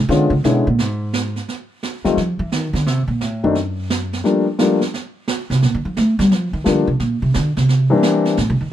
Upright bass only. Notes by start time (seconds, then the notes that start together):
0.09 D3
0.30 C#3
0.44 B2
0.67 A#2
0.80 G#2
2.05 G3
2.17 F3
2.39 E3
2.53 D#3
2.73 D3
2.86 C3
3.08 A#2
3.21 A2
3.44 F#2
5.50 C3
5.63 A#2
5.75 D3
5.85 F3
5.97 A3
6.19 G3
6.32 F3
6.53 D#3
6.66 D3
6.87 C3
7.00 A#2
7.22 C3
7.36 D3
7.57 C3
8.38 A2
8.50 C3
8.61 D#3